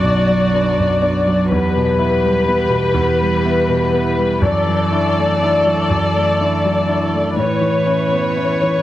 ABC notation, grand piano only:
X:1
M:3/4
L:1/8
Q:1/4=122
K:Edor
V:1 name="Grand piano"
[B,,,F,,] F, [B,D] F,, [B,D] F, | E,, B,, [B,E] G, [B,E] B,, | E,, G, [B,E] B,, [B,E] G, | F,, F, [DE] A, [DE] F, |
F,, A, [DE] F, [DE] A, | A,, E, [CE] B, [CE] E, |]